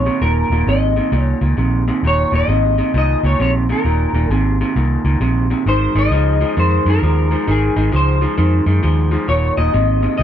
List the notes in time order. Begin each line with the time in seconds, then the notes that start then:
Already playing: C#5
0.06 D#2 C3
0.21 D#1 D#2 A#2 A#4
0.50 D#1 D#2 A#2
0.67 G#1 D#2 C3 D#5
0.96 D#2 C3
1.12 C2 D#2 A#2
1.21 C#5
1.41 C#2 D#2 A#2
1.57 A#1 D#2 C3
1.88 D#2 C3
2.03 D#1 D#2 A#2
2.07 C#5
2.32 D#1 D#2 A#2 D#5
2.48 G#1 D#2 C3
2.78 D#2 C3
2.94 C2 D#2 A#2 D#5
3.23 C#2 D#2 A#2 C#5
3.39 A#1 D#2 C3 C#5
3.69 D#2 C3 A#4
3.84 D#1 D#2 A#2
4.13 D#1 D#2 A#2
4.29 G#1 D#2 C3 G#4
4.61 D#2 C3
4.76 C2 D#2 A#2
5.04 C#2 D#2 A#2
5.20 A#1 D#2 C3
5.50 D#2 C3
5.66 G#1 G#2 D#3 C5
5.95 G#1 G#2 D#3 D#5
6.10 C#2 G#2 F3
6.41 G#2 F3
6.57 F2 G#2 D#3 C5
6.85 F#2 G#2 D#3
6.90 A#4
7.02 D#2 G#2 F3
7.31 G#2 F3
7.47 G#1 G#2 D#3 G#4
7.76 G#1 G#2 D#3
7.92 C#2 G#2 F3
7.96 C5
8.21 G#2 F3
8.38 F2 G#2 D#3
8.66 F#2 G#2 D#3
8.83 D#2 G#2 F3
9.11 G#2 F3
9.28 D#1 D#2 A#2 C#5
9.57 D#1 D#2 A#2 D#5
9.74 G#1 D#2 C3
10.02 D#2 C3
10.18 C2 D#2 A#2 D#5